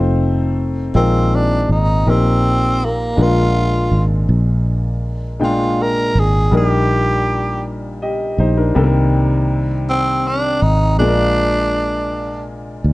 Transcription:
Already playing: F1 A3 C4 D#4 F4 C5
0.94 A#1 A#2 D#3 G#3 C4 F4 A#4
1.35 D4
1.69 G#1 D#4
2.06 A#1 A#2 C4 D#4 G4 A#4
2.85 A#3
3.16 A#1 A#2 G#3 A#3 D4 F4 A#4
3.22 F4
3.92 G#1
4.29 A#1
5.39 A#2 G#3 A#3 D4 F4 G5
5.44 F4
5.82 A#4
6.15 G#1
6.19 G#4
6.51 A#1 A#2 G3 A#3 D4 D#4 A#4
6.56 G4
8.02 G4 D#5
8.38 A#1 D#4 C5
8.57 D4 A#4
8.75 C2 C3 D#3 G3 A#3 C4 A4
8.84 A#4
9.90 C4
10.27 D4
10.62 G#1 D#4
10.98 A#1 A#2 G#3 A#3 D4 F4 G#4
11.08 A#4
12.84 D2

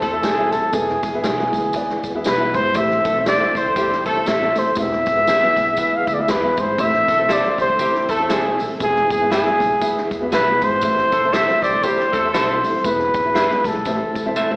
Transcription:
Already playing: E3 A3 C4 A4
0.00 E2 A3 A4, kick, closed hi-hat, tambourine
0.12 C4 E4 A4 C5 E5
0.22 B1 G#4, snare, closed hi-hat, tambourine
0.37 C4 E4 A4 C5 E5
0.51 D#1 A4, closed hi-hat, tambourine
0.72 E1 E3 G#3 B3 E4 G#4 B4 E5, kick, closed hi-hat, tambourine
0.89 snare
1.03 G#1 G#4, kick, closed hi-hat, tambourine
1.13 B3 E4 G#4 B4 E5
1.23 B1 G#4, snare, closed hi-hat, tambourine
1.39 B3 E4 G#4 B4 E5, snare
1.53 D2, kick, closed hi-hat, tambourine
1.73 B3 E4 G#4 B4 D5, kick, closed hi-hat, tambourine
1.89 muted upright bass stroke, snare
2.03 E2, kick, closed hi-hat, tambourine
2.15 B3 E4 G#4 B4 E5
2.24 B1 B4, snare, closed hi-hat, tambourine
2.39 B3 E4 G#4 B4 E5
2.54 G#1 C5, kick, closed hi-hat, tambourine
2.74 A1 A2 A3 C4 E4 A4 C5 E5, kick, closed hi-hat, tambourine
2.90 snare
3.04 B1 A3 A4, kick, closed hi-hat, tambourine
3.15 C4 E4 A4 C5 E5
3.25 C4 C5 D5, snare, closed hi-hat, tambourine
3.40 C4 E4 A4 C5 E5, snare
3.55 C2 C4 C5, kick, closed hi-hat, tambourine
3.66 D2
3.76 E2 G3 C4 E4 G4 A4 C5 E5, kick, closed hi-hat, tambourine
3.92 snare
4.06 C2 A3 A4, kick, closed hi-hat, tambourine
4.16 C4 E4 A4 C5 E5
4.26 A1 E5, snare, closed hi-hat, tambourine
4.41 C4 E4 A4 C5 E5
4.55 D#1 C5, closed hi-hat, tambourine
4.75 E1 E3 G#3 B3 E4 G#4 B4 E5, kick, closed hi-hat, tambourine
4.92 snare
5.06 G#1, kick, closed hi-hat, tambourine
5.16 B3 E4 G#4 B4 E5
5.27 snare, closed hi-hat, tambourine
5.42 B3 E4 G#4 B4 E5, muted upright bass stroke, snare
5.56 B1, kick, closed hi-hat, tambourine
5.76 B3 E4 G#4 B4 E5, kick, closed hi-hat, tambourine
5.92 F5, muted upright bass stroke
6.06 D2 E5, kick, closed hi-hat, tambourine
6.14 D5
6.18 B3 E4 G#4 B4 E5
6.28 E2 B4, snare, closed hi-hat, tambourine
6.43 B3 E4 G#4 B4 E5
6.57 G#1 C5, kick, closed hi-hat, tambourine
6.77 A1 A2 E3 A3 C4 E4 A4 C5 E5, kick, closed hi-hat, tambourine
6.93 snare
7.08 B1 A3 A4, kick, closed hi-hat, tambourine
7.18 C4 E4 A4 C5 E5
7.29 C4 A4 C5 D5 E5, snare, closed hi-hat, tambourine
7.44 C4 E4 A4 C5 E5, snare
7.58 C2 C4 C5, kick, closed hi-hat, tambourine
7.69 D2
7.79 G3 C4 E4 G4 A4 C5 E5, kick, closed hi-hat, tambourine
7.94 muted upright bass stroke, snare
8.08 E2 A3 A4, kick, closed hi-hat, tambourine
8.20 C4 E4 A4 C5 E5
8.29 B1 G#4 A4 C5 E5, snare, closed hi-hat, tambourine
8.44 C4 E4 A4 C5 E5
8.59 D#1, open hi-hat, tambourine
8.80 E1 E3 G#3 B3 E4 G#4 B4 E5, kick, closed hi-hat, tambourine
8.96 snare
9.10 G#1 G#4, kick, closed hi-hat, tambourine
9.20 B3 E4 G#4 B4 E5
9.31 G#4 B4 E5, snare, closed hi-hat, tambourine
9.45 B3 E4 G#4 B4 E5, snare
9.60 B1, kick, closed hi-hat, tambourine
9.71 D2
9.80 B3 E4 G#4 B4 E5, kick, closed hi-hat, tambourine
9.96 muted upright bass stroke, snare
10.11 E2, kick, closed hi-hat, tambourine
10.21 B3 E4 G#4 B4 E5
10.31 B1 G#4 B4 E5, snare, closed hi-hat, tambourine
10.47 B3 E4 G#4 B4 E5
10.61 G#1 C5, kick, closed hi-hat, tambourine
10.81 A1 A2 A3 C4 E4 A4 C5 E5, kick, closed hi-hat, tambourine
10.98 snare
11.12 B1 A3 A4, kick, closed hi-hat, tambourine
11.23 C4 E4 A4 C5 E5
11.33 C4 A4 C5 E5, snare, closed hi-hat, tambourine
11.48 C4 E4 A4 C5 E5, snare
11.62 C2 C4 C5 D5, kick, closed hi-hat, tambourine
11.72 D2
11.83 G3 C4 E4 G4 A4 C5 E5, kick, closed hi-hat, tambourine
11.98 muted upright bass stroke, snare
12.13 E2 A3 A4, kick, closed hi-hat, tambourine
12.24 C4 E4 A4 C5 E5
12.33 B1 A4 C5 E5, snare, closed hi-hat, tambourine
12.49 C4 E4 A4 C5 E5
12.63 D#1, open hi-hat, tambourine
12.84 E1 E3 G#3 B3 E4 G#4 B4 E5, kick, closed hi-hat, tambourine
12.99 snare
13.14 G#1, kick, closed hi-hat, tambourine
13.24 B3 E4 G#4 B4 E5
13.35 G#4 B4 E5, snare, closed hi-hat, tambourine
13.49 B3 E4 G#4 B4 E5, snare
13.64 A1 A4, kick, closed hi-hat, tambourine
13.75 B1
13.85 A1 A2 A3 C4 E4 A4 C5 E5, kick, closed hi-hat, tambourine
14.00 F1
14.15 kick, closed hi-hat, tambourine
14.26 E1 C4 E4 A4 C5 E5
14.36 A4 C5 E5, tambourine
14.51 G#1 C4 E4 A4 C5 E5

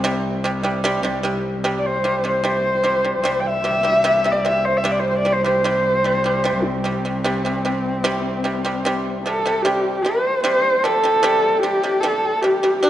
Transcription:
Already playing: C2 C4
0.04 C3 G3
0.44 C3 G3
0.63 C3 G3
0.84 C3 G3
1.03 C3 G3
1.23 C3 G3
1.64 C3 G3
1.78 D5
1.86 C5
2.04 C3 G3
2.24 C3 G3 C5
2.44 C3 G3
2.84 C3 G3
3.05 C3 G3
3.24 C2 C3 G3
3.40 G5
3.47 E5
3.64 C3 G3
3.83 C3 G3
4.04 C3 G3
4.24 C3 G3
4.32 D5
4.44 C3 G3 E5
4.65 C5
4.77 E5
4.84 C3 G3
4.91 D5
4.99 C5
5.10 C5
5.19 D5
5.25 C3 G3
5.33 C5
5.44 C3 G3 C5
5.64 C3 G3
6.04 C3 G3
6.24 C3 G3
6.44 C3 G3
6.65 C4
6.84 C3 G3
7.05 C3 G3
7.24 C3 G3
7.45 C3 G3
7.65 C3 G3
8.04 C3 G3
8.44 C3 G3
8.65 C3 G3
8.85 C3 G3
9.24 C3 G3 A4
9.46 C3 G3
9.62 C3 G3 G4
10.03 C3 G3 C5
10.43 C3 G3 C5
10.84 C3 G3 A4
11.04 C3 G3
11.23 C3 G3
11.62 C3 G3 G4
11.83 C3 G3
12.01 C3 G3 A4
12.42 C3 G3 G4
12.63 C3 G3
12.82 G3 D4 G4

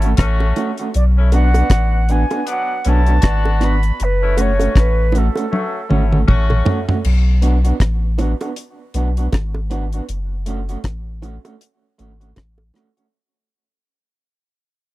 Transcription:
Already playing: G#1 C#4 A5
0.02 A3 C#4 F#4, closed hi-hat
0.17 A1 A3 C#4 F#4, kick, cross-stick, closed hi-hat
0.40 high bongo
0.56 A3 C#4 F#4, closed hi-hat, low bongo
0.78 A3 C#4 F#4, closed hi-hat
0.94 B1 D5, closed hi-hat
1.17 A3 C#4 E4
1.32 B3 D4 F#4 F#5, closed hi-hat, high bongo
1.54 B3 D4 F#4, closed hi-hat, high bongo
1.70 A1, kick, cross-stick, closed hi-hat
2.09 B3 D4 F#4 G#5, closed hi-hat
2.31 B3 D4 F#4, closed hi-hat, high bongo
2.46 F#3 B3 D4 F#5, closed hi-hat
2.84 B1 A3 B3 C#4 D4 E4 F#4 A5, closed hi-hat
3.06 B3 D4 F#4, closed hi-hat
3.22 G#1 B3 D4 F#4, kick, cross-stick, closed hi-hat
3.45 high bongo
3.60 B3 D4 F#4 B5, cross-stick, closed hi-hat, low bongo
3.83 closed hi-hat
4.00 F#1 B4, closed hi-hat
4.21 A3 C#4 E4
4.37 A3 C#4 F#4, closed hi-hat, high bongo
4.41 C#5
4.59 A3 C#4 F#4, closed hi-hat, high bongo
4.76 A1 B4, kick, cross-stick, closed hi-hat
5.12 A3 C#4 F#4, closed hi-hat, low bongo
5.18 A4
5.36 A3 C#4 F#4, closed hi-hat, high bongo
5.51 F#3 A3 C#4, high tom
5.89 G#1 A3 C#4 E4 F#4, mid tom
6.12 A3 C#4 F#4, mid tom
6.27 A1 A3 C#4 F#4, kick, mid tom
6.50 mid tom, high bongo
6.65 A3 C#4 F#4, floor tom, low bongo
6.88 A3 C#4 F#4, floor tom
7.04 B1, crash
7.42 B3 D4 F#4, closed hi-hat
7.64 B3 D4 F#4, closed hi-hat
7.80 A1, kick, cross-stick, closed hi-hat
8.18 B3 D4 F#4, closed hi-hat, low bongo
8.41 B3 D4 F#4, closed hi-hat, high bongo
8.56 closed hi-hat
8.94 B1 B3 D4 F#4, closed hi-hat
9.17 B3 D4 F#4, closed hi-hat
9.32 G#1, kick, cross-stick, closed hi-hat, high bongo
9.55 high bongo
9.70 B3 D4 F#4, closed hi-hat, low bongo
9.92 B3 D4 F#4, closed hi-hat
10.09 F#1, closed hi-hat
10.46 A3 C#4 F#4, closed hi-hat
10.69 A3 C#4 F#4, closed hi-hat
10.84 A1, kick, cross-stick, closed hi-hat
11.22 A3 C#4 F#4, closed hi-hat, low bongo
11.45 A3 C#4 F#4, closed hi-hat, high bongo
11.61 closed hi-hat
11.98 G#1 A3 C#4 F#4, closed hi-hat
12.20 A3 C#4 F#4, closed hi-hat
12.36 A1, kick, cross-stick, closed hi-hat, high bongo
12.58 high bongo
12.74 A3 C#4 F#4, cross-stick, closed hi-hat, low bongo
12.97 A3 C#4 F#4, closed hi-hat

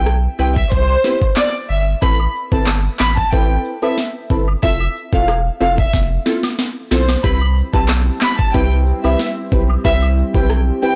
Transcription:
Already playing: B1
0.06 cross-stick, closed hi-hat
0.39 C2 C4 E4 G4 B4 G5
0.56 E5, kick
0.72 C2 C5, kick, closed hi-hat
1.04 C4 E4 G4 B4, snare
1.22 kick
1.36 D5, snare, clap, closed hi-hat
1.70 G1 E5
2.02 A1 C4 E4 A4 B4 B5, kick, closed hi-hat
2.19 high woodblock
2.36 cabasa
2.52 G1 C4 E4 A4 B4 A5, kick
2.66 cross-stick, snare, clap, closed hi-hat, high woodblock
2.99 A1 B5, snare, clap, cabasa
3.17 A5, kick
3.32 A1 C4 E4 A4 B4 G5, kick, closed hi-hat
3.65 cabasa
3.82 C4 E4 A4 B4 E5, high woodblock
3.98 snare, closed hi-hat
4.30 G1 C4 E4 A4 B4, kick, cabasa
4.48 high woodblock
4.63 F1 C4 E4 F4 A4 E5, kick, closed hi-hat
4.80 high woodblock
4.96 cabasa
5.13 E1 C4 E4 F4 A4 F5, kick
5.28 cross-stick, closed hi-hat, high woodblock
5.60 F1 C4 E4 F4 A4 F5, cabasa
5.78 E5, kick
5.93 F1, kick, snare, closed hi-hat
6.26 C4 E4 F4 A4, snare, cabasa
6.43 snare, high woodblock
6.59 snare, closed hi-hat
6.91 B1 C4 E4 F4 A4 C5, snare, cabasa
7.09 snare, high woodblock
7.24 C2 G3 C4 E4 G4 B4 B5, kick, closed hi-hat
7.41 high woodblock
7.57 cabasa
7.73 B1 C4 E4 G4 B4 A5, kick
7.88 cross-stick, snare, clap, closed hi-hat
8.21 B5, snare, clap, cabasa
8.39 A5, kick
8.54 C2 C4 E4 G4 B4 G5, kick, closed hi-hat
8.87 cabasa
9.04 C2 C4 E4 G4 B4 E5, high woodblock
9.19 snare, closed hi-hat
9.51 B1 C4 E4 G4 B4, kick, cabasa
9.70 high woodblock
9.85 C2 C4 E4 G4 B4 E5, kick, closed hi-hat
10.02 high woodblock
10.18 cabasa
10.34 B1 C4 E4 G4 B4 G5, kick
10.50 cross-stick, closed hi-hat
10.82 C4 E4 G4 B4 G5, cabasa

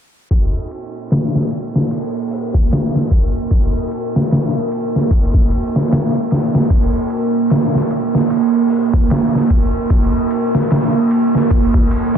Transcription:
0.31 A#3 A#4, kick, ride
0.71 ride
1.11 snare, ride
1.35 snare
1.51 ride
1.76 snare
1.91 ride
2.31 open hi-hat
2.54 kick
2.71 snare, ride
2.96 snare
3.11 kick, ride
3.51 kick, ride
3.91 ride
4.16 snare
4.31 snare, ride
4.72 ride
4.96 snare
5.11 kick, ride
5.34 kick
5.51 ride
5.76 snare
5.91 snare, ride
6.14 ride
6.31 snare, ride
6.55 snare
6.70 kick, ride
7.10 ride
7.50 snare, ride
7.75 snare
7.91 ride
8.15 snare
8.30 ride
8.70 open hi-hat
8.93 kick
9.10 snare, ride
9.35 snare
9.50 kick, ride
9.90 kick, ride
10.31 ride
10.55 snare
10.71 snare, ride
11.11 ride
11.35 snare
11.51 kick, ride
11.74 kick
11.91 ride

